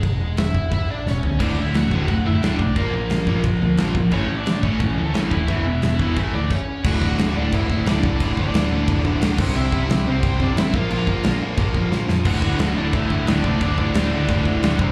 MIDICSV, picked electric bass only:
0, 0, Header, 1, 2, 480
1, 0, Start_track
1, 0, Tempo, 340329
1, 55, Time_signature, 4, 2, 24, 8
1, 10614, Tempo, 338028
1, 21111, End_track
2, 0, Start_track
2, 0, Title_t, "Picked electric bass"
2, 0, Program_c, 0, 34
2, 45, Note_on_c, 0, 28, 101
2, 232, Note_off_c, 0, 28, 0
2, 280, Note_on_c, 0, 28, 79
2, 469, Note_off_c, 0, 28, 0
2, 516, Note_on_c, 0, 28, 96
2, 706, Note_off_c, 0, 28, 0
2, 766, Note_on_c, 0, 28, 90
2, 953, Note_off_c, 0, 28, 0
2, 1007, Note_on_c, 0, 28, 82
2, 1193, Note_off_c, 0, 28, 0
2, 1248, Note_on_c, 0, 33, 89
2, 1434, Note_off_c, 0, 33, 0
2, 1496, Note_on_c, 0, 28, 83
2, 1679, Note_off_c, 0, 28, 0
2, 1743, Note_on_c, 0, 38, 98
2, 1924, Note_off_c, 0, 38, 0
2, 1972, Note_on_c, 0, 26, 102
2, 2157, Note_off_c, 0, 26, 0
2, 2215, Note_on_c, 0, 26, 86
2, 2399, Note_off_c, 0, 26, 0
2, 2458, Note_on_c, 0, 26, 87
2, 2641, Note_off_c, 0, 26, 0
2, 2693, Note_on_c, 0, 26, 90
2, 2878, Note_off_c, 0, 26, 0
2, 2934, Note_on_c, 0, 26, 83
2, 3118, Note_off_c, 0, 26, 0
2, 3174, Note_on_c, 0, 30, 89
2, 3358, Note_off_c, 0, 30, 0
2, 3412, Note_on_c, 0, 26, 71
2, 3597, Note_off_c, 0, 26, 0
2, 3652, Note_on_c, 0, 35, 96
2, 3837, Note_off_c, 0, 35, 0
2, 3896, Note_on_c, 0, 34, 93
2, 4080, Note_off_c, 0, 34, 0
2, 4134, Note_on_c, 0, 34, 89
2, 4319, Note_off_c, 0, 34, 0
2, 4374, Note_on_c, 0, 34, 89
2, 4558, Note_off_c, 0, 34, 0
2, 4604, Note_on_c, 0, 34, 102
2, 4793, Note_off_c, 0, 34, 0
2, 4851, Note_on_c, 0, 34, 83
2, 5037, Note_off_c, 0, 34, 0
2, 5091, Note_on_c, 0, 38, 89
2, 5277, Note_off_c, 0, 38, 0
2, 5317, Note_on_c, 0, 34, 91
2, 5509, Note_off_c, 0, 34, 0
2, 5566, Note_on_c, 0, 32, 101
2, 5754, Note_off_c, 0, 32, 0
2, 5806, Note_on_c, 0, 33, 111
2, 5994, Note_off_c, 0, 33, 0
2, 6051, Note_on_c, 0, 33, 89
2, 6237, Note_off_c, 0, 33, 0
2, 6294, Note_on_c, 0, 33, 94
2, 6480, Note_off_c, 0, 33, 0
2, 6533, Note_on_c, 0, 33, 104
2, 6719, Note_off_c, 0, 33, 0
2, 6769, Note_on_c, 0, 33, 88
2, 6956, Note_off_c, 0, 33, 0
2, 7024, Note_on_c, 0, 38, 93
2, 7206, Note_off_c, 0, 38, 0
2, 7257, Note_on_c, 0, 33, 91
2, 7441, Note_off_c, 0, 33, 0
2, 7496, Note_on_c, 0, 27, 82
2, 7681, Note_off_c, 0, 27, 0
2, 7731, Note_on_c, 0, 28, 102
2, 7918, Note_off_c, 0, 28, 0
2, 7983, Note_on_c, 0, 28, 85
2, 8165, Note_off_c, 0, 28, 0
2, 8234, Note_on_c, 0, 28, 85
2, 8412, Note_off_c, 0, 28, 0
2, 8455, Note_on_c, 0, 28, 88
2, 8640, Note_off_c, 0, 28, 0
2, 8695, Note_on_c, 0, 33, 89
2, 8880, Note_off_c, 0, 33, 0
2, 8933, Note_on_c, 0, 38, 85
2, 9119, Note_off_c, 0, 38, 0
2, 9656, Note_on_c, 0, 26, 91
2, 9845, Note_off_c, 0, 26, 0
2, 9894, Note_on_c, 0, 26, 93
2, 10084, Note_off_c, 0, 26, 0
2, 10151, Note_on_c, 0, 26, 102
2, 10334, Note_off_c, 0, 26, 0
2, 10395, Note_on_c, 0, 26, 100
2, 10575, Note_off_c, 0, 26, 0
2, 10610, Note_on_c, 0, 26, 85
2, 10991, Note_off_c, 0, 26, 0
2, 11096, Note_on_c, 0, 26, 78
2, 11285, Note_off_c, 0, 26, 0
2, 11339, Note_on_c, 0, 36, 90
2, 11527, Note_off_c, 0, 36, 0
2, 11576, Note_on_c, 0, 26, 113
2, 11955, Note_off_c, 0, 26, 0
2, 12052, Note_on_c, 0, 26, 94
2, 12243, Note_off_c, 0, 26, 0
2, 12297, Note_on_c, 0, 38, 109
2, 12487, Note_off_c, 0, 38, 0
2, 12534, Note_on_c, 0, 26, 99
2, 12725, Note_off_c, 0, 26, 0
2, 12774, Note_on_c, 0, 26, 87
2, 12965, Note_off_c, 0, 26, 0
2, 13023, Note_on_c, 0, 26, 85
2, 13211, Note_off_c, 0, 26, 0
2, 13253, Note_on_c, 0, 36, 91
2, 13445, Note_off_c, 0, 36, 0
2, 13495, Note_on_c, 0, 36, 114
2, 13686, Note_off_c, 0, 36, 0
2, 13733, Note_on_c, 0, 36, 104
2, 13925, Note_off_c, 0, 36, 0
2, 13984, Note_on_c, 0, 36, 114
2, 14171, Note_off_c, 0, 36, 0
2, 14218, Note_on_c, 0, 36, 108
2, 14408, Note_off_c, 0, 36, 0
2, 14457, Note_on_c, 0, 36, 82
2, 14836, Note_off_c, 0, 36, 0
2, 14921, Note_on_c, 0, 33, 84
2, 15117, Note_off_c, 0, 33, 0
2, 15170, Note_on_c, 0, 34, 109
2, 15363, Note_off_c, 0, 34, 0
2, 15415, Note_on_c, 0, 34, 118
2, 15795, Note_off_c, 0, 34, 0
2, 15890, Note_on_c, 0, 34, 105
2, 16083, Note_off_c, 0, 34, 0
2, 16133, Note_on_c, 0, 46, 104
2, 16325, Note_off_c, 0, 46, 0
2, 16371, Note_on_c, 0, 34, 83
2, 16563, Note_off_c, 0, 34, 0
2, 16606, Note_on_c, 0, 34, 98
2, 16801, Note_off_c, 0, 34, 0
2, 16849, Note_on_c, 0, 46, 81
2, 17042, Note_off_c, 0, 46, 0
2, 17087, Note_on_c, 0, 41, 96
2, 17323, Note_on_c, 0, 26, 100
2, 17344, Note_off_c, 0, 41, 0
2, 17519, Note_off_c, 0, 26, 0
2, 17567, Note_on_c, 0, 26, 99
2, 17761, Note_off_c, 0, 26, 0
2, 17816, Note_on_c, 0, 26, 110
2, 18006, Note_off_c, 0, 26, 0
2, 18050, Note_on_c, 0, 26, 94
2, 18242, Note_off_c, 0, 26, 0
2, 18294, Note_on_c, 0, 26, 86
2, 18674, Note_off_c, 0, 26, 0
2, 18778, Note_on_c, 0, 26, 80
2, 18967, Note_off_c, 0, 26, 0
2, 19009, Note_on_c, 0, 36, 95
2, 19202, Note_off_c, 0, 36, 0
2, 19251, Note_on_c, 0, 26, 100
2, 19631, Note_off_c, 0, 26, 0
2, 19726, Note_on_c, 0, 26, 99
2, 19920, Note_off_c, 0, 26, 0
2, 19979, Note_on_c, 0, 38, 98
2, 20167, Note_off_c, 0, 38, 0
2, 20207, Note_on_c, 0, 26, 96
2, 20400, Note_off_c, 0, 26, 0
2, 20454, Note_on_c, 0, 26, 102
2, 20644, Note_off_c, 0, 26, 0
2, 20704, Note_on_c, 0, 38, 89
2, 20890, Note_off_c, 0, 38, 0
2, 20932, Note_on_c, 0, 36, 102
2, 21111, Note_off_c, 0, 36, 0
2, 21111, End_track
0, 0, End_of_file